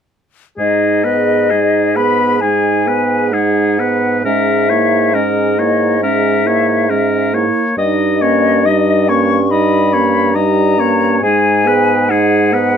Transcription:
0.58 bassoon G#2, french horn G#3, clarinet D#4, oboe G#4, flute D#5
1.04 french horn B3, clarinet G#4, oboe B4
1.50 french horn G#3, clarinet D#4, oboe G#4
1.96 french horn B3, clarinet G#4, oboe B4, flute B5
2.41 french horn G#3, clarinet D#4, oboe G#4, flute G#5
2.87 french horn B3, clarinet G#4, oboe B4
3.32 french horn G#3, clarinet D#4, oboe G#4, flute F#5
3.79 french horn B3, clarinet G#4, oboe B4
4.24 bassoon G#2, french horn G#3, clarinet C#4, oboe A#4, flute E5
4.69 french horn A#3, clarinet E4, oboe C#5
5.14 french horn G#3, clarinet C#4, oboe A#4, flute D#5
5.58 french horn A#3, clarinet E4, oboe C#5
6.02 french horn G#3, clarinet C#4, oboe A#4, flute E5
6.46 french horn A#3, clarinet E4, oboe C#5
6.90 french horn G#3, clarinet C#4, oboe A#4
7.33 french horn A#3, clarinet E4, oboe C#5
7.77 bassoon G2, french horn G3, clarinet D#4, flute D#5, oboe D#5
8.22 french horn A#3, clarinet C#4, oboe C#5
8.66 french horn G3, clarinet D#4, oboe D#5
9.09 french horn A#3, clarinet C#4, oboe C#5, flute C#6
9.51 french horn G3, clarinet D#4, oboe D#5, flute B5
9.93 french horn A#3, clarinet C#4, oboe C#5
10.34 french horn G3, clarinet D#4, oboe D#5, flute A#5
10.78 french horn A#3, clarinet C#4, oboe C#5
11.21 bassoon G#2, french horn G#3, clarinet D#4, oboe G#4, flute G#5
11.66 french horn B3, clarinet G#4, oboe B4
12.09 french horn G#3, clarinet D#4, oboe G#4, flute F#5
12.53 french horn B3, clarinet G#4, oboe B4

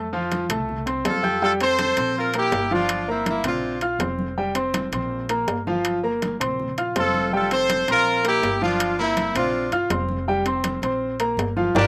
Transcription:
Already playing: upright bass F2
0.13 grand piano F3 F4 F5, high conga
0.32 high conga, high timbale, low timbale
0.49 upright bass C2, grand piano A3 A4 A5, high conga, low conga, high timbale
0.69 high conga, low conga
0.86 grand piano C4 C5 C6, high conga, high timbale
1.05 upright bass F2, horn section F4 A4, high conga, high timbale, low timbale
1.23 grand piano G4 G5 G6, high conga
1.42 grand piano G3 G4 G5, horn section F4 A4, high conga
1.60 grand piano C4 C5 C6, horn section A4 C5, high conga, high timbale
1.79 high conga, high timbale, low timbale
1.97 upright bass A#1, grand piano C4 C5 C6, high conga, high timbale
2.16 horn section F4 A#4, high conga
2.34 grand piano A#3 A#4 A#5, horn section E4 G4, high conga, high timbale
2.52 upright bass G1, high conga, high timbale, low timbale
2.71 grand piano F3 F4 F5, horn section D4 F4, high conga
2.89 high conga, high timbale
3.08 grand piano A#3 A#4 A#5, horn section C4 E4, high conga
3.26 horn section A#3 E4, high conga, high timbale, low timbale
3.44 upright bass A#1, grand piano C4 C5 C6, horn section D4 F4, high conga, low conga, high timbale
3.63 high conga
3.81 grand piano F4 F5 F6, high conga, high timbale
3.99 upright bass F1, grand piano C4 C5 C6, high conga, high timbale, low timbale
4.19 high conga
4.37 grand piano G3 G4 G5, high conga
4.55 grand piano C4 C5 C6, high conga, high timbale
4.74 high conga, high timbale, low timbale
4.92 upright bass A#1, grand piano C4 C5 C6, high conga, high timbale
5.11 high conga
5.29 grand piano A#3 A#4 A#5, high conga, high timbale
5.47 upright bass G1, high conga, high timbale, low timbale
5.67 grand piano F3 F4 F5, high conga
5.85 high conga, high timbale
6.03 grand piano A#3 A#4 A#5, high conga
6.22 high conga, high timbale, low timbale
6.40 upright bass A#1, grand piano C4 C5 C6, high conga, low conga, high timbale
6.59 high conga, low conga
6.78 grand piano F4 F5 F6, high conga, high timbale
6.96 upright bass F1, grand piano C4 C5 C6, horn section F4 A4, high conga, high timbale, low timbale
7.14 high conga
7.33 grand piano G3 G4 G5, horn section F4 A4, high conga
7.51 grand piano C4 C5 C6, horn section A4 C5, high conga, high timbale
7.70 high conga, high timbale, low timbale
7.88 upright bass A#1, grand piano C4 C5 C6, horn section F4 A#4, high conga, high timbale
8.07 high conga
8.24 grand piano A#3 A#4 A#5, horn section E4 G4, high conga, high timbale
8.43 upright bass G1, high conga, high timbale, low timbale
8.62 grand piano F3 F4 F5, horn section D4 F4, high conga
8.80 high timbale
8.99 grand piano A#3 A#4 A#5, horn section C4 E4, high conga
9.17 high conga, high timbale, low timbale
9.35 upright bass A#1, grand piano C4 C5 C6, horn section D4 F4, high conga, low conga, high timbale
9.54 high conga
9.72 upright bass G1, grand piano F4 F5 F6, high conga, high timbale
9.90 upright bass F1, grand piano C4 C5 C6, high conga, high timbale, low timbale
10.09 high conga
10.27 grand piano G3 G4 G5, high conga
10.46 grand piano C4 C5 C6, high conga, high timbale
10.64 high conga, high timbale, low timbale
10.82 upright bass A#1, grand piano C4 C5 C6, high conga, high timbale
11.01 high conga
11.20 grand piano A#3 A#4 A#5, high conga, high timbale
11.37 upright bass G1, high conga, high timbale, low timbale
11.57 grand piano F3 F4 F5, high conga
11.75 upright bass G1, horn section D4 F4 G4, grand piano G4 A#4 D5, high conga, high timbale

